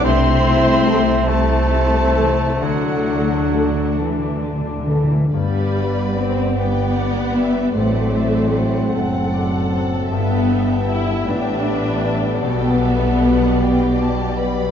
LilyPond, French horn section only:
\new Staff \with { instrumentName = "French horn section" } { \time 6/8 \key g \major \tempo 4. = 50 r4 <c' a'>16 r4 r16 <c' a'>16 r16 | r4 <d' a'>16 r4 r16 <d' a'>16 r16 | <g b>2. | <fis c'>2. |
<g b>2.~ | <g b>2. | }